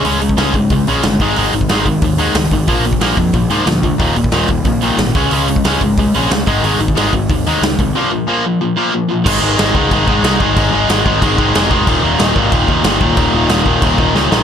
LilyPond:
<<
  \new Staff \with { instrumentName = "Distorted electric guitar" } { \clef bass \time 4/4 \key aes \major \tempo 4 = 182 <des aes des'>8 <des aes>8 <des aes des'>8 <des aes>8 <des aes>8 <des aes des'>8 <des aes>8 <aes, ees aes>8 | <aes, ees aes>8 <aes, ees>8 <aes, ees aes>8 <aes, ees>8 <aes, ees>8 <aes, ees aes>8 <aes, ees>8 <aes, ees>8 | <bes, f bes>8 <bes, f>8 <bes, f bes>8 <bes, f>8 <bes, f>8 <bes, f bes>8 <bes, f>8 <bes, f>8 | <ees, bes, ees>8 <ees, bes,>8 <ees, bes, ees>8 <ees, bes,>8 <ees, bes,>8 <ees, bes, ees>8 <ees, bes,>8 <des aes des'>8 |
<des aes des'>8 <des aes>8 <des aes des'>8 <des aes>8 <des aes>8 <des aes des'>8 <des aes>8 <aes, ees aes>8 | <aes, ees aes>8 <aes, ees>8 <aes, ees aes>8 <aes, ees>8 <aes, ees>8 <aes, ees aes>8 <aes, ees>8 <aes, ees>8 | <bes, f bes>8 <bes, f>8 <bes, f bes>8 <bes, f>8 <bes, f>8 <bes, f bes>8 <bes, f>8 <bes, f>8 | <aes, ees aes>8 <aes, ees aes>8 <aes, ees aes>8 <aes, ees aes>8 <aes, ees aes>8 <aes, ees aes>8 <aes, ees aes>8 <aes, ees aes>8 |
<aes, ees aes>8 <aes, ees aes>8 <aes, ees aes>8 <aes, ees aes>8 <aes, ees aes>8 <aes, ees aes>8 <aes, ees aes>8 <aes, ees aes>8 | <ees, bes, ees>8 <ees, bes, ees>8 <ees, bes, ees>8 <ees, bes, ees>8 <ees, bes, ees>8 <ees, bes, ees>8 <ees, bes, ees>8 <ees, bes, ees>8 | <ees, bes, ees>8 <ees, bes, ees>8 <ees, bes, ees>8 <ees, bes, ees>8 <ees, bes, ees>8 <ees, bes, ees>8 <ees, bes, ees>8 <ees, bes, ees>8 | }
  \new Staff \with { instrumentName = "Distorted electric guitar" } { \clef bass \time 4/4 \key aes \major <des aes des'>8 <des aes>8 <des aes des'>8 <des aes>8 <des aes>8 <des aes des'>8 <des aes>8 <aes, ees aes>8 | <aes, ees aes>8 <aes, ees>8 <aes, ees aes>8 <aes, ees>8 <aes, ees>8 <aes, ees aes>8 <aes, ees>8 <aes, ees>8 | <bes, f bes>8 <bes, f>8 <bes, f bes>8 <bes, f>8 <bes, f>8 <bes, f bes>8 <bes, f>8 <bes, f>8 | <ees, bes, ees>8 <ees, bes,>8 <ees, bes, ees>8 <ees, bes,>8 <ees, bes,>8 <ees, bes, ees>8 <ees, bes,>8 <des aes des'>8 |
<des aes des'>8 <des aes>8 <des aes des'>8 <des aes>8 <des aes>8 <des aes des'>8 <des aes>8 <aes, ees aes>8 | <aes, ees aes>8 <aes, ees>8 <aes, ees aes>8 <aes, ees>8 <aes, ees>8 <aes, ees aes>8 <aes, ees>8 <aes, ees>8 | <bes, f bes>8 <bes, f>8 <bes, f bes>8 <bes, f>8 <bes, f>8 <bes, f bes>8 <bes, f>8 <bes, f>8 | <aes, ees aes>8 <aes, ees aes>8 <aes, ees aes>8 <aes, ees aes>8 <aes, ees aes>8 <aes, ees aes>8 <aes, ees aes>8 <aes, ees aes>8 |
<aes, ees aes>8 <aes, ees aes>8 <aes, ees aes>8 <aes, ees aes>8 <aes, ees aes>8 <aes, ees aes>8 <aes, ees aes>8 <aes, ees aes>8 | <ees, bes, ees>8 <ees, bes, ees>8 <ees, bes, ees>8 <ees, bes, ees>8 <ees, bes, ees>8 <ees, bes, ees>8 <ees, bes, ees>8 <ees, bes, ees>8 | <ees, bes, ees>8 <ees, bes, ees>8 <ees, bes, ees>8 <ees, bes, ees>8 <ees, bes, ees>8 <ees, bes, ees>8 <ees, bes, ees>8 <ees, bes, ees>8 | }
  \new Staff \with { instrumentName = "Picked electric bass" } { \clef bass \time 4/4 \key aes \major des,4 des,8 aes,,8 des,8 bes,,8 g,,8 aes,,8 | aes,,8 aes,,8 aes,,8 aes,,8 ees,4 des,8 aes,,8 | bes,,4 bes,,8 f,8 bes,,8 aes,8 d,4 | ees,,8 ees,,8 ees,,8 ees,,8 bes,,4 aes,,8 des,8 |
des,4 des,8 aes,,8 des,8 bes,,8 des,8 aes,,8 | aes,,8 aes,,8 aes,,8 aes,,8 ees,4 des,8 c,8 | r1 | aes,,8 aes,,8 aes,,8 des,8 aes,,8 aes,8 c,8 aes,,8 |
aes,,8 aes,,8 aes,,8 aes,,8 aes,,8 aes,,8 f,,8 f,,8 | ees,,8 ees,,8 ees,,8 aes,,8 ees,,8 ees,8 g,,8 ees,,8 | ees,,8 ees,,8 ees,,8 ees,,8 ees,,8 ees,,8 des,8 bes,,8 | }
  \new DrumStaff \with { instrumentName = "Drums" } \drummode { \time 4/4 hho8 hho16 bd16 <hho sn>8 <hho bd>8 <hho bd>8 hho8 <hho sn>8 <hho bd>8 | hho8 hho16 bd16 <hho sn>8 <hho bd>8 <hho bd>8 hho8 <hho sn>8 <hho bd>8 | <hho bd>8 hho16 bd16 <hho sn>8 <hho bd>8 <hho bd>8 hho8 <hho sn>8 <hho bd>8 | <hho bd>8 hho16 bd16 <hho sn>8 <hho bd>8 <hho bd>8 hho8 <hho sn>8 <hho bd>8 |
hho8 hho16 bd16 <hho sn>8 <hho bd>8 <hho bd>8 hho8 <hho sn>8 <hho bd>8 | hho8 hho16 bd16 <hho sn>8 <hho bd>8 <hho bd>8 hho8 <hho sn>8 <hho bd>8 | r4 r4 r4 r4 | <cymc bd>4 <cymc sn>8 bd8 <cymc bd>8 bd8 <cymc sn>8 bd8 |
<cymc bd>4 <cymc sn>8 bd8 <cymc bd>8 bd8 <cymc sn>8 bd8 | <cymc bd>4 <cymc sn>8 bd8 <cymc bd>8 bd8 <cymc sn>8 bd8 | <cymc bd>4 <cymc sn>8 bd8 <cymc bd>8 bd8 sn8 sn8 | }
>>